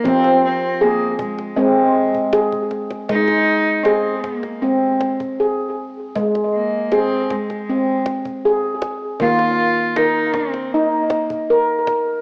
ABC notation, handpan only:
X:1
M:4/4
L:1/8
Q:1/4=79
K:Ab
V:1 name="Handpan"
C2 A2 C2 A2 | A,2 A2 C2 A2 | A,2 A2 C2 A2 | B,2 B2 E2 B2 |]
V:2 name="Handpan" clef=bass
F,4 A,4 | z8 | z8 | E,8 |]